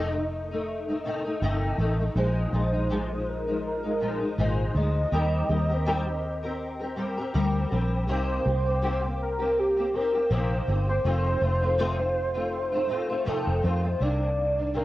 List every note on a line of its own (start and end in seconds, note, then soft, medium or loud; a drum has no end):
0.00 1.37 F1 loud
0.00 0.13 F2 loud
0.00 0.14 C3 loud
0.00 0.14 D#3 loud
0.00 0.14 A3 loud
0.00 0.13 D#4 loud
0.00 1.06 D#5 loud
0.14 0.52 D#3 soft
0.14 0.51 A3 soft
0.14 0.50 D#4 medium
0.51 0.89 D#3 medium
0.51 0.89 A3 medium
0.51 0.87 D#4 medium
0.88 1.04 D#3 medium
0.88 1.05 A3 medium
0.88 1.05 D#4 medium
1.05 1.25 C3 medium
1.05 1.25 D#3 medium
1.05 1.25 A3 medium
1.05 1.23 D#4 medium
1.25 1.41 D#3 soft
1.25 1.42 A3 medium
1.25 1.41 D#4 medium
1.41 1.71 G1 medium
1.41 1.78 F2 medium
1.41 1.77 C3 medium
1.41 1.78 D#3 medium
1.41 1.79 A3 loud
1.41 1.79 D#4 loud
1.78 2.08 A1 medium
1.78 1.99 C3 medium
1.78 1.99 D#3 medium
1.78 1.99 A3 medium
1.78 1.97 D#4 medium
1.99 2.16 D#3 soft
1.99 2.16 A3 soft
1.99 2.15 D#4 soft
2.16 2.45 A#1 loud
2.16 2.51 A#2 medium
2.16 2.52 F3 medium
2.16 2.53 G#3 loud
2.16 2.53 D#4 medium
2.16 3.30 C5 loud
2.52 4.34 A#1 loud
2.52 2.73 A#2 medium
2.52 2.73 F3 medium
2.52 2.72 G#3 medium
2.52 2.71 D#4 medium
2.72 2.89 F3 soft
2.72 2.90 G#3 medium
2.72 2.89 D#4 medium
2.90 3.10 A#2 medium
2.90 3.10 F3 medium
2.90 3.10 G#3 medium
2.90 3.09 D#4 medium
3.10 3.48 F3 soft
3.10 3.47 G#3 soft
3.10 3.46 D#4 soft
3.29 3.65 A#4 medium
3.47 3.85 F3 medium
3.47 3.84 G#3 medium
3.47 3.82 D#4 medium
3.66 4.35 A#4 loud
3.83 4.00 F3 soft
3.83 4.01 G#3 medium
3.83 4.00 D#4 medium
4.00 4.21 A#2 medium
4.00 4.21 F3 medium
4.00 4.20 G#3 medium
4.00 4.19 D#4 medium
4.20 4.37 F3 soft
4.20 4.38 G#3 soft
4.20 4.37 D#4 medium
4.38 4.68 G#1 medium
4.38 4.73 A#2 medium
4.38 4.74 F3 medium
4.38 4.75 G#3 medium
4.38 4.76 D#4 medium
4.38 4.79 C5 loud
4.74 5.04 D2 loud
4.74 5.11 A#2 medium
4.74 5.12 F3 medium
4.74 5.12 G#3 medium
4.74 5.12 D#4 medium
4.74 6.99 D#5 loud
5.11 5.42 D#2 loud
5.11 5.49 D#3 medium
5.11 5.47 G3 medium
5.11 5.48 C4 medium
5.11 5.49 G4 loud
5.11 5.50 A#4 loud
5.49 7.30 D#2 medium
5.49 5.69 G3 medium
5.49 5.70 C4 medium
5.49 5.69 G4 medium
5.49 5.67 A#4 medium
5.69 5.85 C4 medium
5.69 5.86 G4 medium
5.69 5.86 A#4 medium
5.85 6.06 D#3 loud
5.85 6.06 G3 loud
5.85 6.07 C4 loud
5.85 6.06 G4 loud
5.85 6.05 A#4 loud
6.06 6.44 C4 soft
6.06 6.43 G4 medium
6.06 6.42 A#4 medium
6.43 6.81 C4 medium
6.43 6.80 G4 medium
6.43 6.78 A#4 medium
6.79 6.96 C4 medium
6.79 6.96 G4 medium
6.79 6.97 A#4 medium
6.96 7.17 G3 medium
6.96 7.17 C4 medium
6.96 7.17 G4 medium
6.96 7.15 A#4 medium
7.17 7.33 C4 soft
7.17 7.33 G4 medium
7.17 7.34 A#4 medium
7.34 7.64 D2 loud
7.34 7.69 G3 loud
7.34 7.70 C4 medium
7.34 7.71 G4 medium
7.34 7.72 A#4 loud
7.70 8.09 A#1 loud
7.70 8.07 G3 medium
7.70 8.08 C4 medium
7.70 8.08 G4 medium
7.70 8.09 A#4 medium
8.07 8.38 C2 loud
8.07 8.45 C3 medium
8.07 8.44 D#3 medium
8.07 8.45 A#3 medium
8.07 8.46 C4 loud
8.07 8.46 G4 medium
8.11 9.17 C5 loud
8.45 10.27 C2 loud
8.45 8.66 D#3 medium
8.45 8.66 A#3 medium
8.45 8.65 C4 medium
8.45 8.64 G4 medium
8.65 8.81 A#3 soft
8.65 8.82 C4 medium
8.65 8.82 G4 medium
8.81 9.02 C3 medium
8.81 9.03 D#3 medium
8.81 9.03 A#3 medium
8.81 9.02 C4 loud
8.81 9.01 G4 loud
9.02 9.40 A#3 soft
9.02 9.39 C4 soft
9.02 9.38 G4 medium
9.22 9.61 A#4 loud
9.39 9.78 A#3 soft
9.39 9.77 C4 medium
9.39 9.75 G4 medium
9.59 9.97 G4 loud
9.76 9.93 A#3 medium
9.76 9.94 C4 medium
9.76 9.93 G4 medium
9.93 10.14 D#3 medium
9.93 10.14 A#3 medium
9.93 10.13 C4 medium
9.93 10.12 G4 medium
9.93 10.33 A#4 loud
10.13 10.30 A#3 soft
10.13 10.30 C4 medium
10.13 10.30 G4 medium
10.30 10.60 A#1 medium
10.30 10.67 C3 medium
10.30 10.66 D#3 loud
10.30 10.67 A#3 medium
10.30 10.68 C4 medium
10.30 10.69 G4 medium
10.30 10.89 C5 loud
10.67 10.98 G1 loud
10.67 10.88 D#3 medium
10.67 10.88 A#3 medium
10.67 10.88 C4 medium
10.67 10.87 G4 medium
10.88 11.05 A#3 soft
10.88 11.05 C4 soft
10.88 11.05 G4 soft
10.88 13.24 C5 loud
11.04 11.34 F1 loud
11.04 11.42 F2 medium
11.04 11.42 C3 medium
11.04 11.40 D#3 medium
11.04 11.40 A3 medium
11.04 11.41 C4 medium
11.04 11.42 F4 medium
11.41 13.23 F1 loud
11.41 11.62 D#3 medium
11.41 11.62 A3 medium
11.41 11.61 C4 medium
11.41 11.60 F4 medium
11.61 11.77 D#3 soft
11.61 11.78 A3 medium
11.61 11.78 C4 medium
11.61 11.78 F4 medium
11.78 11.99 F2 loud
11.78 11.99 C3 medium
11.78 11.99 D#3 loud
11.78 11.98 A3 loud
11.78 11.98 C4 loud
11.78 11.96 F4 loud
11.98 12.35 D#3 soft
11.98 12.35 A3 soft
11.98 12.34 C4 medium
11.98 12.33 F4 medium
12.34 12.74 D#3 medium
12.34 12.73 A3 medium
12.34 12.72 C4 medium
12.34 12.71 F4 medium
12.72 12.87 D#3 medium
12.72 12.88 A3 medium
12.72 12.89 C4 medium
12.72 12.89 F4 medium
12.88 13.09 D#3 medium
12.88 13.09 A3 medium
12.88 13.08 C4 medium
12.88 13.07 F4 medium
13.08 13.25 D#3 medium
13.08 13.25 A3 medium
13.08 13.26 C4 medium
13.08 13.25 F4 medium
13.25 13.63 F2 medium
13.25 13.63 C3 medium
13.25 13.61 D#3 medium
13.25 13.62 A3 medium
13.25 13.63 C4 medium
13.25 13.64 F4 loud
13.25 13.62 A4 loud
13.25 muted fingered electric bass stroke soft
13.47 13.61 F1 medium
13.63 13.94 F2 loud
13.63 13.84 D#3 medium
13.63 13.84 A3 medium
13.63 13.83 C4 medium
13.63 13.82 F4 medium
13.63 14.03 C5 loud
13.83 13.99 D#3 soft
13.83 14.01 A3 medium
13.83 14.01 C4 medium
13.83 14.00 F4 medium
14.00 14.85 C2 loud
14.00 14.58 C3 medium
14.00 14.58 D#3 medium
14.00 14.59 A#3 medium
14.00 14.57 D4 medium
14.00 14.76 D5 loud
14.58 14.73 D#3 soft
14.58 14.74 A#3 medium
14.58 14.75 D4 medium
14.74 14.85 C3 medium
14.74 14.85 D#3 medium
14.74 14.85 A#3 medium
14.74 14.85 D4 medium
14.74 14.85 A#4 loud